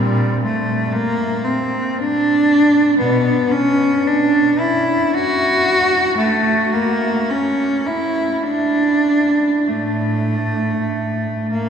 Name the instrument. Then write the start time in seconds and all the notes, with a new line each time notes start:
cello
Already playing: A#2 G3
0.45 A3
0.93 A#3
1.45 C4
1.98 D4
2.99 B2 B3
3.51 C#4
4.07 D4
4.60 E4
5.14 F#4
6.18 A3
6.74 A#3
7.30 C#4
7.86 E4
8.43 D4
9.69 A2 A3
11.51 A#3